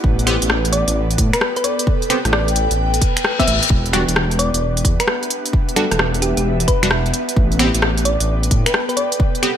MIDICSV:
0, 0, Header, 1, 8, 480
1, 0, Start_track
1, 0, Tempo, 458015
1, 40, Time_signature, 4, 2, 24, 8
1, 10029, End_track
2, 0, Start_track
2, 0, Title_t, "Ambient pad"
2, 0, Program_c, 0, 92
2, 0, Note_on_c, 0, 64, 92
2, 0, Note_on_c, 0, 67, 75
2, 0, Note_on_c, 0, 69, 74
2, 0, Note_on_c, 0, 74, 85
2, 8, Note_on_c, 0, 71, 91
2, 440, Note_off_c, 0, 67, 0
2, 518, Note_on_c, 0, 79, 92
2, 959, Note_off_c, 0, 64, 0
2, 1086, Note_off_c, 0, 74, 0
2, 3880, Note_off_c, 0, 79, 0
2, 3880, Note_on_c, 0, 62, 76
2, 3932, Note_on_c, 0, 67, 75
2, 4464, Note_on_c, 0, 76, 86
2, 4676, Note_on_c, 0, 78, 81
2, 4807, Note_off_c, 0, 69, 0
2, 5319, Note_off_c, 0, 71, 0
2, 7480, Note_off_c, 0, 78, 0
2, 7694, Note_on_c, 0, 69, 75
2, 7697, Note_on_c, 0, 79, 86
2, 7904, Note_on_c, 0, 71, 79
2, 8471, Note_off_c, 0, 76, 0
2, 9127, Note_off_c, 0, 62, 0
2, 9127, Note_off_c, 0, 67, 0
2, 10029, Note_off_c, 0, 69, 0
2, 10029, Note_off_c, 0, 71, 0
2, 10029, Note_off_c, 0, 79, 0
2, 10029, End_track
3, 0, Start_track
3, 0, Title_t, "Synth pluck"
3, 0, Program_c, 1, 84
3, 760, Note_on_c, 1, 74, 92
3, 1367, Note_off_c, 1, 74, 0
3, 1399, Note_on_c, 1, 71, 91
3, 1501, Note_off_c, 1, 71, 0
3, 1641, Note_on_c, 1, 71, 91
3, 1705, Note_off_c, 1, 71, 0
3, 1720, Note_on_c, 1, 74, 91
3, 1889, Note_off_c, 1, 74, 0
3, 2438, Note_on_c, 1, 74, 95
3, 2608, Note_off_c, 1, 74, 0
3, 3558, Note_on_c, 1, 76, 92
3, 3610, Note_off_c, 1, 76, 0
3, 3640, Note_on_c, 1, 76, 81
3, 3742, Note_off_c, 1, 76, 0
3, 4599, Note_on_c, 1, 74, 91
3, 5206, Note_off_c, 1, 74, 0
3, 5239, Note_on_c, 1, 71, 94
3, 5341, Note_off_c, 1, 71, 0
3, 6040, Note_on_c, 1, 69, 92
3, 6141, Note_off_c, 1, 69, 0
3, 6199, Note_on_c, 1, 69, 75
3, 6251, Note_off_c, 1, 69, 0
3, 6519, Note_on_c, 1, 67, 90
3, 6621, Note_off_c, 1, 67, 0
3, 6679, Note_on_c, 1, 67, 79
3, 6731, Note_off_c, 1, 67, 0
3, 6999, Note_on_c, 1, 71, 96
3, 7479, Note_off_c, 1, 71, 0
3, 8439, Note_on_c, 1, 74, 95
3, 9046, Note_off_c, 1, 74, 0
3, 9077, Note_on_c, 1, 71, 90
3, 9180, Note_off_c, 1, 71, 0
3, 9316, Note_on_c, 1, 71, 92
3, 9383, Note_off_c, 1, 71, 0
3, 9397, Note_on_c, 1, 74, 95
3, 9568, Note_off_c, 1, 74, 0
3, 10029, End_track
4, 0, Start_track
4, 0, Title_t, "Analog synth pad"
4, 0, Program_c, 2, 89
4, 0, Note_on_c, 2, 59, 89
4, 0, Note_on_c, 2, 71, 88
4, 3868, Note_off_c, 2, 59, 0
4, 3868, Note_off_c, 2, 71, 0
4, 3881, Note_on_c, 2, 59, 87
4, 3881, Note_on_c, 2, 71, 88
4, 10029, Note_off_c, 2, 59, 0
4, 10029, Note_off_c, 2, 71, 0
4, 10029, End_track
5, 0, Start_track
5, 0, Title_t, "Synth stab"
5, 0, Program_c, 3, 62
5, 280, Note_on_c, 3, 59, 89
5, 280, Note_on_c, 3, 60, 78
5, 280, Note_on_c, 3, 67, 98
5, 374, Note_off_c, 3, 59, 0
5, 374, Note_off_c, 3, 60, 0
5, 374, Note_off_c, 3, 67, 0
5, 2200, Note_on_c, 3, 59, 77
5, 2200, Note_on_c, 3, 60, 69
5, 2200, Note_on_c, 3, 67, 81
5, 2294, Note_off_c, 3, 59, 0
5, 2294, Note_off_c, 3, 60, 0
5, 2294, Note_off_c, 3, 67, 0
5, 3558, Note_on_c, 3, 59, 85
5, 3558, Note_on_c, 3, 60, 78
5, 3558, Note_on_c, 3, 67, 94
5, 3607, Note_off_c, 3, 59, 0
5, 3607, Note_off_c, 3, 60, 0
5, 3607, Note_off_c, 3, 67, 0
5, 4120, Note_on_c, 3, 55, 86
5, 4120, Note_on_c, 3, 62, 81
5, 4120, Note_on_c, 3, 66, 93
5, 4214, Note_off_c, 3, 55, 0
5, 4214, Note_off_c, 3, 62, 0
5, 4214, Note_off_c, 3, 66, 0
5, 6040, Note_on_c, 3, 55, 76
5, 6040, Note_on_c, 3, 62, 68
5, 6040, Note_on_c, 3, 66, 81
5, 6134, Note_off_c, 3, 55, 0
5, 6134, Note_off_c, 3, 62, 0
5, 6134, Note_off_c, 3, 66, 0
5, 7157, Note_on_c, 3, 62, 80
5, 7157, Note_on_c, 3, 66, 94
5, 7158, Note_on_c, 3, 55, 86
5, 7206, Note_off_c, 3, 55, 0
5, 7206, Note_off_c, 3, 62, 0
5, 7206, Note_off_c, 3, 66, 0
5, 7958, Note_on_c, 3, 59, 87
5, 7958, Note_on_c, 3, 60, 80
5, 7959, Note_on_c, 3, 67, 96
5, 8053, Note_off_c, 3, 59, 0
5, 8053, Note_off_c, 3, 60, 0
5, 8053, Note_off_c, 3, 67, 0
5, 9879, Note_on_c, 3, 59, 76
5, 9879, Note_on_c, 3, 60, 68
5, 9879, Note_on_c, 3, 67, 83
5, 9973, Note_off_c, 3, 60, 0
5, 9974, Note_off_c, 3, 59, 0
5, 9974, Note_off_c, 3, 67, 0
5, 10029, End_track
6, 0, Start_track
6, 0, Title_t, "Detuned saw bass"
6, 0, Program_c, 4, 39
6, 39, Note_on_c, 4, 33, 104
6, 400, Note_off_c, 4, 33, 0
6, 439, Note_on_c, 4, 33, 83
6, 881, Note_off_c, 4, 33, 0
6, 917, Note_on_c, 4, 33, 101
6, 1220, Note_off_c, 4, 33, 0
6, 1240, Note_on_c, 4, 45, 82
6, 1374, Note_off_c, 4, 45, 0
6, 2359, Note_on_c, 4, 33, 81
6, 2801, Note_off_c, 4, 33, 0
6, 2839, Note_on_c, 4, 33, 99
6, 3141, Note_off_c, 4, 33, 0
6, 3641, Note_on_c, 4, 33, 87
6, 3775, Note_off_c, 4, 33, 0
6, 3879, Note_on_c, 4, 28, 99
6, 4240, Note_off_c, 4, 28, 0
6, 4279, Note_on_c, 4, 28, 83
6, 4721, Note_off_c, 4, 28, 0
6, 4758, Note_on_c, 4, 28, 99
6, 5060, Note_off_c, 4, 28, 0
6, 5079, Note_on_c, 4, 40, 80
6, 5214, Note_off_c, 4, 40, 0
6, 6199, Note_on_c, 4, 28, 82
6, 6640, Note_off_c, 4, 28, 0
6, 6679, Note_on_c, 4, 28, 99
6, 6981, Note_off_c, 4, 28, 0
6, 7158, Note_on_c, 4, 28, 90
6, 7460, Note_off_c, 4, 28, 0
6, 7718, Note_on_c, 4, 33, 102
6, 8079, Note_off_c, 4, 33, 0
6, 8119, Note_on_c, 4, 33, 83
6, 8560, Note_off_c, 4, 33, 0
6, 8599, Note_on_c, 4, 33, 97
6, 8901, Note_off_c, 4, 33, 0
6, 8918, Note_on_c, 4, 45, 83
6, 9054, Note_off_c, 4, 45, 0
6, 10029, End_track
7, 0, Start_track
7, 0, Title_t, "Reverse cymbal"
7, 0, Program_c, 5, 119
7, 2921, Note_on_c, 5, 60, 62
7, 3880, Note_off_c, 5, 60, 0
7, 10029, End_track
8, 0, Start_track
8, 0, Title_t, "Drums"
8, 40, Note_on_c, 9, 36, 113
8, 145, Note_off_c, 9, 36, 0
8, 200, Note_on_c, 9, 42, 40
8, 281, Note_off_c, 9, 42, 0
8, 281, Note_on_c, 9, 26, 51
8, 281, Note_on_c, 9, 42, 110
8, 386, Note_off_c, 9, 26, 0
8, 386, Note_off_c, 9, 42, 0
8, 440, Note_on_c, 9, 42, 70
8, 521, Note_on_c, 9, 37, 119
8, 545, Note_off_c, 9, 42, 0
8, 626, Note_off_c, 9, 37, 0
8, 680, Note_on_c, 9, 42, 56
8, 761, Note_off_c, 9, 42, 0
8, 761, Note_on_c, 9, 42, 99
8, 865, Note_off_c, 9, 42, 0
8, 920, Note_on_c, 9, 42, 74
8, 1024, Note_off_c, 9, 42, 0
8, 1159, Note_on_c, 9, 42, 55
8, 1240, Note_off_c, 9, 42, 0
8, 1240, Note_on_c, 9, 36, 107
8, 1240, Note_on_c, 9, 42, 112
8, 1344, Note_off_c, 9, 36, 0
8, 1344, Note_off_c, 9, 42, 0
8, 1399, Note_on_c, 9, 26, 67
8, 1399, Note_on_c, 9, 42, 71
8, 1481, Note_on_c, 9, 37, 117
8, 1503, Note_off_c, 9, 26, 0
8, 1503, Note_off_c, 9, 42, 0
8, 1586, Note_off_c, 9, 37, 0
8, 1639, Note_on_c, 9, 42, 39
8, 1720, Note_off_c, 9, 42, 0
8, 1720, Note_on_c, 9, 42, 94
8, 1825, Note_off_c, 9, 42, 0
8, 1878, Note_on_c, 9, 42, 70
8, 1960, Note_on_c, 9, 36, 116
8, 1983, Note_off_c, 9, 42, 0
8, 2065, Note_off_c, 9, 36, 0
8, 2119, Note_on_c, 9, 42, 38
8, 2201, Note_off_c, 9, 42, 0
8, 2201, Note_on_c, 9, 26, 54
8, 2201, Note_on_c, 9, 42, 112
8, 2306, Note_off_c, 9, 26, 0
8, 2306, Note_off_c, 9, 42, 0
8, 2359, Note_on_c, 9, 37, 58
8, 2359, Note_on_c, 9, 42, 69
8, 2441, Note_off_c, 9, 37, 0
8, 2441, Note_on_c, 9, 37, 121
8, 2464, Note_off_c, 9, 42, 0
8, 2545, Note_off_c, 9, 37, 0
8, 2600, Note_on_c, 9, 42, 55
8, 2681, Note_off_c, 9, 42, 0
8, 2681, Note_on_c, 9, 42, 99
8, 2786, Note_off_c, 9, 42, 0
8, 2839, Note_on_c, 9, 42, 70
8, 2944, Note_off_c, 9, 42, 0
8, 3079, Note_on_c, 9, 42, 56
8, 3160, Note_off_c, 9, 42, 0
8, 3160, Note_on_c, 9, 36, 107
8, 3160, Note_on_c, 9, 42, 114
8, 3264, Note_off_c, 9, 36, 0
8, 3265, Note_off_c, 9, 42, 0
8, 3319, Note_on_c, 9, 26, 72
8, 3319, Note_on_c, 9, 42, 70
8, 3401, Note_on_c, 9, 37, 115
8, 3424, Note_off_c, 9, 26, 0
8, 3424, Note_off_c, 9, 42, 0
8, 3506, Note_off_c, 9, 37, 0
8, 3558, Note_on_c, 9, 36, 61
8, 3560, Note_on_c, 9, 42, 38
8, 3642, Note_off_c, 9, 42, 0
8, 3642, Note_on_c, 9, 42, 96
8, 3663, Note_off_c, 9, 36, 0
8, 3746, Note_off_c, 9, 42, 0
8, 3801, Note_on_c, 9, 42, 69
8, 3880, Note_on_c, 9, 36, 121
8, 3905, Note_off_c, 9, 42, 0
8, 3984, Note_off_c, 9, 36, 0
8, 4042, Note_on_c, 9, 42, 38
8, 4123, Note_off_c, 9, 42, 0
8, 4123, Note_on_c, 9, 26, 55
8, 4123, Note_on_c, 9, 42, 109
8, 4228, Note_off_c, 9, 26, 0
8, 4228, Note_off_c, 9, 42, 0
8, 4281, Note_on_c, 9, 42, 64
8, 4362, Note_on_c, 9, 37, 124
8, 4386, Note_off_c, 9, 42, 0
8, 4466, Note_off_c, 9, 37, 0
8, 4521, Note_on_c, 9, 42, 53
8, 4602, Note_off_c, 9, 42, 0
8, 4602, Note_on_c, 9, 42, 100
8, 4707, Note_off_c, 9, 42, 0
8, 4760, Note_on_c, 9, 42, 68
8, 4865, Note_off_c, 9, 42, 0
8, 5000, Note_on_c, 9, 42, 53
8, 5079, Note_on_c, 9, 36, 114
8, 5081, Note_off_c, 9, 42, 0
8, 5081, Note_on_c, 9, 42, 114
8, 5184, Note_off_c, 9, 36, 0
8, 5186, Note_off_c, 9, 42, 0
8, 5239, Note_on_c, 9, 26, 72
8, 5239, Note_on_c, 9, 42, 69
8, 5319, Note_on_c, 9, 37, 123
8, 5344, Note_off_c, 9, 26, 0
8, 5344, Note_off_c, 9, 42, 0
8, 5424, Note_off_c, 9, 37, 0
8, 5478, Note_on_c, 9, 42, 38
8, 5559, Note_off_c, 9, 42, 0
8, 5559, Note_on_c, 9, 42, 95
8, 5664, Note_off_c, 9, 42, 0
8, 5718, Note_on_c, 9, 42, 67
8, 5799, Note_on_c, 9, 36, 124
8, 5822, Note_off_c, 9, 42, 0
8, 5904, Note_off_c, 9, 36, 0
8, 5959, Note_on_c, 9, 42, 35
8, 6041, Note_off_c, 9, 42, 0
8, 6041, Note_on_c, 9, 26, 57
8, 6041, Note_on_c, 9, 42, 110
8, 6146, Note_off_c, 9, 26, 0
8, 6146, Note_off_c, 9, 42, 0
8, 6199, Note_on_c, 9, 37, 63
8, 6199, Note_on_c, 9, 42, 63
8, 6280, Note_off_c, 9, 37, 0
8, 6280, Note_on_c, 9, 37, 127
8, 6304, Note_off_c, 9, 42, 0
8, 6385, Note_off_c, 9, 37, 0
8, 6439, Note_on_c, 9, 42, 52
8, 6520, Note_off_c, 9, 42, 0
8, 6520, Note_on_c, 9, 42, 97
8, 6625, Note_off_c, 9, 42, 0
8, 6679, Note_on_c, 9, 42, 66
8, 6783, Note_off_c, 9, 42, 0
8, 6918, Note_on_c, 9, 42, 50
8, 6999, Note_off_c, 9, 42, 0
8, 6999, Note_on_c, 9, 36, 114
8, 6999, Note_on_c, 9, 42, 108
8, 7104, Note_off_c, 9, 36, 0
8, 7104, Note_off_c, 9, 42, 0
8, 7157, Note_on_c, 9, 26, 73
8, 7157, Note_on_c, 9, 42, 66
8, 7238, Note_on_c, 9, 37, 125
8, 7262, Note_off_c, 9, 26, 0
8, 7262, Note_off_c, 9, 42, 0
8, 7343, Note_off_c, 9, 37, 0
8, 7397, Note_on_c, 9, 42, 37
8, 7478, Note_off_c, 9, 42, 0
8, 7478, Note_on_c, 9, 42, 93
8, 7583, Note_off_c, 9, 42, 0
8, 7637, Note_on_c, 9, 42, 65
8, 7719, Note_on_c, 9, 36, 127
8, 7742, Note_off_c, 9, 42, 0
8, 7824, Note_off_c, 9, 36, 0
8, 7878, Note_on_c, 9, 42, 36
8, 7959, Note_off_c, 9, 42, 0
8, 7959, Note_on_c, 9, 26, 54
8, 7959, Note_on_c, 9, 42, 100
8, 8064, Note_off_c, 9, 26, 0
8, 8064, Note_off_c, 9, 42, 0
8, 8117, Note_on_c, 9, 42, 63
8, 8199, Note_on_c, 9, 37, 127
8, 8222, Note_off_c, 9, 42, 0
8, 8303, Note_off_c, 9, 37, 0
8, 8358, Note_on_c, 9, 42, 50
8, 8439, Note_off_c, 9, 42, 0
8, 8439, Note_on_c, 9, 42, 95
8, 8544, Note_off_c, 9, 42, 0
8, 8598, Note_on_c, 9, 42, 64
8, 8703, Note_off_c, 9, 42, 0
8, 8838, Note_on_c, 9, 42, 51
8, 8919, Note_off_c, 9, 42, 0
8, 8919, Note_on_c, 9, 36, 114
8, 8919, Note_on_c, 9, 42, 106
8, 9024, Note_off_c, 9, 36, 0
8, 9024, Note_off_c, 9, 42, 0
8, 9078, Note_on_c, 9, 26, 71
8, 9078, Note_on_c, 9, 42, 67
8, 9160, Note_on_c, 9, 37, 127
8, 9183, Note_off_c, 9, 26, 0
8, 9183, Note_off_c, 9, 42, 0
8, 9264, Note_off_c, 9, 37, 0
8, 9318, Note_on_c, 9, 42, 36
8, 9399, Note_off_c, 9, 42, 0
8, 9399, Note_on_c, 9, 42, 91
8, 9504, Note_off_c, 9, 42, 0
8, 9558, Note_on_c, 9, 42, 64
8, 9639, Note_on_c, 9, 36, 122
8, 9663, Note_off_c, 9, 42, 0
8, 9744, Note_off_c, 9, 36, 0
8, 9798, Note_on_c, 9, 42, 37
8, 9880, Note_off_c, 9, 42, 0
8, 9880, Note_on_c, 9, 26, 53
8, 9880, Note_on_c, 9, 42, 100
8, 9985, Note_off_c, 9, 26, 0
8, 9985, Note_off_c, 9, 42, 0
8, 10029, End_track
0, 0, End_of_file